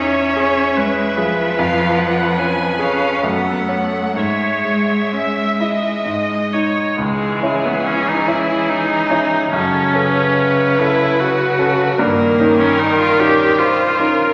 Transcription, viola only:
0.00 0.78 C#5 soft
0.76 3.23 B4 soft
3.24 4.18 A4 soft
4.16 5.05 C#5 soft
5.14 5.63 E5 soft
5.61 6.54 D#5 soft
6.53 7.00 C#5 soft
7.01 7.67 G#3 medium
7.65 7.87 B3 medium
7.86 8.10 C#4 medium
8.08 8.30 D#4 medium
8.28 8.71 E4 medium
8.69 9.52 D#4 medium
9.53 10.80 C#4 medium
10.79 11.21 E4 medium
11.20 12.01 F#4 medium
12.00 12.61 A#3 medium
12.60 12.80 C#4 medium
12.79 12.99 D#4 medium
13.00 13.21 F4 medium
13.20 13.60 G4 medium
13.58 14.33 F4 medium

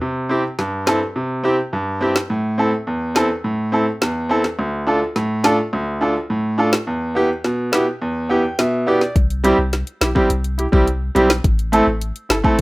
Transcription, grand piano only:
0.01 0.44 C3 medium
0.29 0.41 C4 medium
0.29 0.41 E4 medium
0.29 0.42 G4 medium
0.59 1.01 G2 medium
0.86 0.98 C4 medium
0.86 0.99 E4 medium
0.86 0.99 A4 medium
1.16 1.58 C3 medium
1.44 1.55 C4 medium
1.44 1.56 E4 medium
1.44 1.56 G4 medium
1.73 2.15 G2 medium
2.01 2.13 C4 medium
2.01 2.13 E4 medium
2.01 2.13 G4 medium
2.30 2.73 A2 medium
2.58 2.70 C4 medium
2.58 2.70 E4 medium
2.58 2.70 A4 medium
2.87 3.30 E2 medium
3.15 3.27 C4 medium
3.15 3.27 E4 medium
3.15 3.28 A4 medium
3.44 3.87 A2 medium
3.72 3.84 C4 medium
3.72 3.84 E4 medium
3.72 3.85 A4 medium
4.01 4.44 E2 medium
4.29 4.41 C4 medium
4.29 4.42 E4 medium
4.29 4.42 A4 medium
4.59 5.01 D2 medium
4.87 4.98 D4 medium
4.87 4.99 F4 medium
4.87 4.99 A4 medium
5.16 5.58 A2 medium
5.44 5.55 D4 medium
5.44 5.56 F4 medium
5.44 5.56 A4 medium
5.73 6.15 D2 medium
6.01 6.13 D4 medium
6.01 6.13 F4 medium
6.01 6.13 A4 medium
6.30 6.73 A2 medium
6.58 6.70 D4 medium
6.58 6.70 F4 medium
6.58 6.70 A4 medium
6.87 7.30 E2 medium
7.15 7.27 B3 medium
7.15 7.27 E4 medium
7.15 7.28 G4 loud
7.44 7.87 B2 medium
7.72 7.84 B3 medium
7.72 7.84 E4 medium
7.72 7.85 G4 medium
8.02 8.44 E2 medium
8.29 8.41 B3 medium
8.29 8.42 E4 medium
8.29 8.42 G4 medium
8.29 8.57 G5 medium
8.59 9.01 B2 medium
8.59 8.85 E5 medium
8.87 8.98 B3 medium
8.87 8.99 E4 medium
8.87 8.99 G4 medium
8.87 9.14 D5 medium
9.44 9.55 G3 medium
9.44 9.56 C4 medium
9.44 9.56 E4 medium
9.44 9.56 G4 loud
10.01 10.07 E4 medium
10.01 10.08 G4 medium
10.15 10.27 G3 medium
10.15 10.27 C4 medium
10.15 10.27 E4 medium
10.15 10.28 G4 medium
10.58 10.64 E4 medium
10.58 10.65 G4 medium
10.72 10.84 G3 medium
10.72 10.84 C4 medium
10.72 10.84 E4 medium
10.72 10.85 G4 medium
11.15 11.27 G3 medium
11.15 11.27 C4 medium
11.15 11.27 E4 medium
11.15 11.27 G4 medium
11.72 11.84 A3 medium
11.72 11.84 C4 medium
11.72 11.84 E4 medium
11.72 11.85 A4 loud
12.29 12.35 E4 medium
12.29 12.36 A4 medium
12.44 12.55 A3 medium
12.44 12.56 C4 medium
12.44 12.56 E4 medium
12.44 12.56 A4 medium

